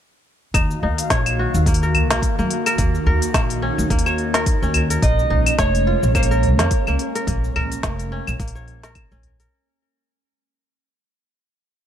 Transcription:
0.54 upright bass D#2, analog synth pad D#3 A#3 F#4 F5, kora D#4, kick, open hi-hat, claves, shaker
0.71 shaker
0.82 upright bass D#2, kora D#4, udu
0.98 open hi-hat, shaker
1.10 upright bass A#1, kora C#5, kick, snare, open hi-hat, shaker
1.26 open hi-hat, claves, shaker
1.39 kora F#4
1.54 upright bass D#2, shaker
1.66 kora A#3, kick, open hi-hat, shaker
1.74 open hi-hat
1.83 kora A#4, shaker
1.95 open hi-hat, udu, claves
2.11 upright bass A#1, kora A#3, snare, open hi-hat, shaker
2.22 kick, open hi-hat, shaker
2.38 upright bass F#2, kora A#3, shaker
2.51 open hi-hat
2.66 kora A#4, open hi-hat, claves, shaker
2.78 upright bass D#2, kora A#3, analog synth pad D#4, kick, open hi-hat, shaker
2.95 shaker
3.06 upright bass D#2, kora A#4, udu
3.22 open hi-hat, shaker
3.34 upright bass A#1, kora A#3, kick, snare, open hi-hat, claves, shaker
3.50 open hi-hat, shaker
3.62 kora C#4
3.78 upright bass D#2, shaker
3.90 upright bass D#2, kora A#3, kick, open hi-hat, shaker
3.99 open hi-hat
4.06 kora C#5, claves, shaker
4.18 open hi-hat
4.34 kora A#4, snare, open hi-hat, shaker
4.46 kick, open hi-hat, shaker
4.62 upright bass D#2, kora C#4, shaker
4.74 open hi-hat, udu, claves
4.90 kora A#4, open hi-hat, shaker
5.02 upright bass A#1, analog synth pad G#3 A#3 C#4, kora D#4, electric slide guitar D#5, kick, open hi-hat, shaker
5.19 shaker
5.30 upright bass A#1, kora D#4, udu
5.46 open hi-hat, claves, shaker
5.58 upright bass F1, kora C#5, electric slide guitar C#5, kick, snare, open hi-hat, shaker
5.75 open hi-hat, shaker
5.87 kora F4
6.03 upright bass A#1, shaker
6.15 kora A#3, electric slide guitar C#5, kick, open hi-hat, claves, shaker
6.23 open hi-hat
6.31 kora A#4, shaker
6.43 open hi-hat, udu
6.59 upright bass F2, kora A#3, snare, open hi-hat, shaker
6.71 kick, open hi-hat, shaker
6.87 upright bass C#2, kora A#3, claves, shaker
6.99 open hi-hat
7.15 kora A#4, open hi-hat, shaker
7.27 upright bass A#1, kora A#3, kick, open hi-hat, shaker
7.44 shaker
7.56 upright bass A#1, kora A#4, udu, claves
7.72 open hi-hat, shaker
7.83 upright bass F1, kora A#3, kick, snare, open hi-hat, shaker
7.99 open hi-hat, shaker
8.12 kora C#4
8.27 upright bass A#1, claves, shaker
8.39 upright bass A#1, kora A#3, kick, open hi-hat, shaker
8.48 open hi-hat
8.55 kora C#5, shaker
8.68 open hi-hat
8.83 kora A#4, snare, open hi-hat, shaker
8.95 kick, open hi-hat, claves, shaker
9.11 upright bass A#1, kora C#4, shaker
9.23 open hi-hat, udu
9.40 kora A#4, open hi-hat, shaker

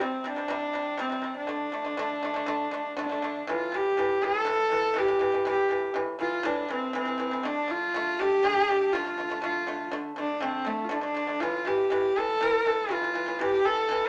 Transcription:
0.00 pipa C3 G3, horsehead fiddle C4
0.24 pipa C3 G3, horsehead fiddle D4
0.36 pipa C3 G3
0.48 pipa C3 G3
0.73 pipa C3 G3
0.97 pipa C3 G3, horsehead fiddle C4
1.10 pipa C3 G3
1.22 pipa C3 G3
1.37 horsehead fiddle D4
1.47 pipa D3 A3
1.72 pipa D3 A3
1.84 pipa D3 A3
1.97 pipa D3 A3
2.23 pipa D3 A3
2.34 pipa D3 A3
2.46 pipa D3 A3
2.71 pipa D3 A3
2.97 pipa D3 A3
3.02 horsehead fiddle D4
3.09 pipa D3 A3
3.22 pipa D3 A3
3.47 pipa A2 E3, horsehead fiddle F4
3.72 pipa A2 E3, horsehead fiddle G4
3.97 pipa A2 E3
4.22 pipa A2 E3, horsehead fiddle A4
4.45 pipa A2 E3
4.70 pipa A2 E3
4.94 pipa A2 E3
4.98 horsehead fiddle G4
5.07 pipa A2 E3
5.19 pipa A2 E3
5.32 pipa A2 E3
5.45 pipa A2 E3, horsehead fiddle G4
5.69 pipa A2 E3
5.94 pipa A2 E3
6.19 pipa A2 E3, horsehead fiddle F4
6.43 pipa A2 E3, horsehead fiddle D4
6.68 pipa A2 E3
6.73 horsehead fiddle C4
6.93 pipa A2 E3
6.98 horsehead fiddle C4
7.05 pipa A2 E3
7.18 pipa A2 E3
7.31 pipa A2 E3
7.43 pipa D3 A3, horsehead fiddle D4
7.68 pipa D3 A3, horsehead fiddle F4
7.94 pipa D3 A3
8.19 pipa D3 A3, horsehead fiddle G4
8.43 pipa D3 A3
8.68 pipa D3 A3
8.92 pipa D3 A3, horsehead fiddle F4
9.05 pipa D3 A3
9.18 pipa D3 A3
9.30 pipa D3 A3
9.42 pipa D3 A3, horsehead fiddle F4
9.67 pipa D3 A3
9.91 pipa D3 A3
10.16 pipa D3 A3, horsehead fiddle D4
10.41 pipa D3 A3, horsehead fiddle C4
10.65 pipa D3 A3, horsehead fiddle A3
10.84 horsehead fiddle F4
10.89 pipa D3 A3
10.94 horsehead fiddle D4
11.01 pipa D3 A3
11.14 pipa D3 A3
11.27 pipa D3 A3
11.40 pipa A2 E3, horsehead fiddle F4
11.65 pipa A2 E3, horsehead fiddle G4
11.90 pipa A2 E3
12.16 pipa A2 E3, horsehead fiddle A4
12.41 pipa A2 E3
12.65 pipa A2 E3
12.89 pipa A2 E3, horsehead fiddle F4
13.02 pipa A2 E3
13.14 pipa A2 E3
13.26 pipa A2 E3
13.39 pipa A2 E3, horsehead fiddle G4
13.64 pipa A2 E3, horsehead fiddle A4
13.89 pipa A2 E3

